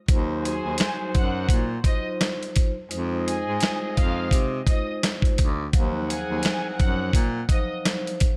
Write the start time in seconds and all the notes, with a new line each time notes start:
0.08 D#2 F#3 D#4 F4 F#4 C5, kick, closed hi-hat
0.43 F#3 D#4 F#4 G#4 C5 G#5, closed hi-hat
0.65 D#2
0.78 snare, closed hi-hat
1.15 F#2 F#5 F#6, kick, closed hi-hat
1.49 A#2, kick, closed hi-hat
1.84 F#3 D#4 F4 C5 D#5 D#6, kick, closed hi-hat
2.21 snare, closed hi-hat
2.43 closed hi-hat
2.56 kick, closed hi-hat
2.89 F2 G#3 C4 D#4 F4 G#4 C5 D#5, closed hi-hat
3.26 G#3 D#4 F4 G#4 C5 G#5, closed hi-hat
3.47 G#2
3.60 snare, closed hi-hat
3.97 F2 F5 F6, kick, closed hi-hat
4.31 C3, kick, closed hi-hat
4.67 G#3 D#4 F4 C5 D#5 D#6, kick, closed hi-hat
5.03 snare, closed hi-hat
5.22 kick, closed hi-hat
5.38 D2, kick, closed hi-hat
5.72 D#2 F3 F#3 C4 D#4 A#4 C5 F#5, kick, closed hi-hat
6.08 F3 F#3 D#4 G#4 C5 G#5, closed hi-hat
6.30 D#2
6.43 snare, closed hi-hat
6.78 F#2 F#5 F#6, kick, closed hi-hat
7.13 A#2, kick, closed hi-hat
7.49 F3 F#3 D#4 C5 D#5 D#6, kick, closed hi-hat
7.85 snare, closed hi-hat
8.07 closed hi-hat
8.20 kick, closed hi-hat